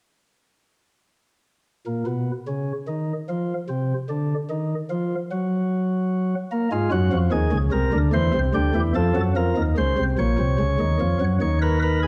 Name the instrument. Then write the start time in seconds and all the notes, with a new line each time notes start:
pipe organ
1.86 A#2
2.06 B2
2.47 C#3
2.88 D#3
3.29 F3
3.69 C3
4.09 D3
4.50 D#3
4.90 F3
5.31 F#3
6.52 A#3
6.72 G#2 G#3 F4
6.92 F#2 F#3 F#4
7.12 F2 F3
7.32 D#2 D#3 G#4
7.52 C#2 C#3
7.72 C2 C3 A#4
7.93 D2 D3
8.13 E2 E3 C5
8.34 C2 C3
8.54 D2 D3 G4
8.75 E2 E3
8.95 F2 F3 A4
9.15 F#2 F#3
9.36 F2 F3 A#4
9.57 D#2 D#3
9.78 C#2 C#3 C5
9.98 C2 C3
10.19 A#1 A#2 C#5
10.39 C2 C3
10.59 C#2 C#3
10.80 D#2 D#3
11.00 F2 F3
11.20 F#2 F#3
11.41 D#2 D#3 C#5
11.62 A#4 B4
11.82 A#4 B4
12.03 G#4